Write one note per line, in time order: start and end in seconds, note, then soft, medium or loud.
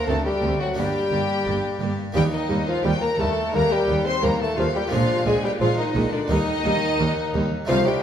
0.00 0.72 C4 medium
0.00 0.73 D4 medium
0.07 0.16 D2 medium
0.07 0.39 D2 medium
0.07 0.16 D2 medium
0.07 0.25 A3 medium
0.07 0.17 C4 medium
0.07 0.25 A4 medium
0.07 0.15 A5 loud
0.26 0.59 G3 medium
0.26 0.60 G4 medium
0.26 0.60 G5 medium
0.43 0.74 D2 medium
0.43 0.51 D2 medium
0.43 0.52 C4 medium
0.61 0.77 F#3 medium
0.61 0.67 F#4 medium
0.61 0.78 F#5 medium
0.74 0.85 G1 medium
0.74 1.08 G2 medium
0.74 0.85 G2 medium
0.74 2.10 A#3 medium
0.74 2.10 D4 medium
0.74 1.96 G4 medium
0.74 1.98 G5 loud
0.78 1.97 G3 loud
0.78 0.86 A#3 medium
1.11 1.19 G1 medium
1.11 1.20 G2 medium
1.11 1.43 G2 medium
1.11 1.21 A#3 medium
1.46 1.54 G1 medium
1.46 1.54 G2 medium
1.46 1.78 G2 medium
1.46 1.55 A#3 medium
1.80 1.88 G1 medium
1.80 2.12 G2 medium
1.80 1.89 G2 medium
1.80 1.89 A#3 medium
2.12 2.23 D#2 medium
2.12 2.46 D#2 medium
2.12 2.24 D#2 medium
2.12 2.23 G3 medium
2.12 2.24 G3 medium
2.12 4.87 A#3 medium
2.12 4.88 D#4 medium
2.12 2.22 G4 medium
2.12 2.23 G5 loud
2.33 2.67 D#3 medium
2.33 2.67 D#4 medium
2.33 2.67 D#5 medium
2.49 2.57 D#2 medium
2.49 2.58 D#2 medium
2.49 2.81 D#2 medium
2.49 2.58 G3 medium
2.68 2.84 F3 medium
2.68 2.85 F4 medium
2.68 2.85 F5 loud
2.83 2.92 D#2 medium
2.83 3.16 D#2 medium
2.83 2.93 G3 medium
2.83 2.90 G4 medium
2.83 3.02 G5 loud
3.01 3.09 A#3 medium
3.01 3.19 A#4 medium
3.01 3.19 A#5 loud
3.18 3.26 D#2 medium
3.18 3.28 D#2 medium
3.18 3.51 D#2 medium
3.18 3.27 G3 medium
3.18 3.56 A3 medium
3.18 3.53 A4 medium
3.18 3.54 A5 medium
3.52 3.61 D#2 medium
3.52 3.62 D#2 medium
3.52 3.85 D#2 medium
3.52 3.62 G3 medium
3.52 3.73 A#3 loud
3.52 3.70 A#4 medium
3.52 3.71 A#5 loud
3.70 4.07 G3 loud
3.70 4.05 G4 medium
3.70 4.06 G5 loud
3.87 3.95 D#2 medium
3.87 4.20 D#2 medium
3.87 3.96 D#2 medium
3.87 3.96 G3 medium
4.05 4.24 C4 medium
4.05 4.23 C5 medium
4.05 4.23 C6 loud
4.22 4.30 D#2 medium
4.22 4.31 D#2 medium
4.22 4.54 D#2 medium
4.22 4.31 G3 medium
4.22 4.44 A#3 medium
4.22 4.39 A#4 medium
4.22 4.41 A#5 medium
4.39 4.58 A3 medium
4.39 4.57 A4 medium
4.39 4.58 A5 loud
4.56 4.65 D#2 medium
4.56 4.89 D#2 medium
4.56 4.67 F3 medium
4.56 4.65 G3 medium
4.56 4.63 F4 medium
4.56 4.75 F5 loud
4.72 4.84 G3 medium
4.72 4.91 G4 medium
4.72 4.92 G5 loud
4.88 4.99 A#2 medium
4.88 6.24 G#3 medium
4.88 6.25 A#3 medium
4.88 6.25 D4 medium
4.88 5.26 F4 medium
4.92 5.00 A#1 medium
4.92 5.23 A#2 medium
4.92 5.26 F3 medium
4.92 5.00 G#3 medium
4.92 5.26 F5 loud
5.25 5.34 A#1 medium
5.25 5.34 A#2 medium
5.25 5.58 A#2 medium
5.25 5.44 G#3 medium
5.25 5.35 G#3 medium
5.25 5.43 G#4 medium
5.25 5.44 G#5 loud
5.44 5.52 G3 medium
5.44 5.61 G4 medium
5.44 5.51 G5 loud
5.60 5.68 A#1 medium
5.60 5.68 A#2 medium
5.60 5.93 A#2 medium
5.60 5.69 F3 medium
5.60 5.69 G#3 medium
5.60 5.78 F4 medium
5.60 5.78 F5 loud
5.77 6.12 D#3 medium
5.77 6.12 D#4 medium
5.77 6.14 D#5 medium
5.95 6.03 A#1 medium
5.95 6.03 A#2 medium
5.95 6.27 A#2 medium
5.95 6.04 G#3 medium
6.11 6.30 D3 medium
6.11 6.19 D4 medium
6.11 6.30 D5 loud
6.28 6.37 D#2 medium
6.28 6.38 D#2 medium
6.28 6.62 D#2 medium
6.28 7.49 D#3 loud
6.28 6.38 G3 medium
6.28 7.63 A#3 medium
6.28 7.48 D#4 loud
6.28 7.64 D#4 medium
6.28 7.51 D#5 loud
6.64 6.95 D#2 medium
6.64 6.72 D#2 medium
6.64 6.73 D#2 medium
6.64 6.72 G3 medium
6.99 7.07 D#2 medium
6.99 7.30 D#2 medium
6.99 7.08 D#2 medium
6.99 7.07 G3 medium
7.33 7.41 D#2 medium
7.33 7.65 D#2 medium
7.33 7.42 D#2 medium
7.33 7.43 G3 medium
7.65 7.76 C2 loud
7.65 7.99 C2 medium
7.65 7.77 C2 medium
7.65 7.89 F3 loud
7.65 7.77 G3 medium
7.65 8.03 A3 medium
7.65 8.03 D#4 medium
7.65 7.74 F4 medium
7.65 7.85 F5 loud
7.86 8.03 G3 medium
7.86 8.03 G4 medium
7.86 8.03 G5 loud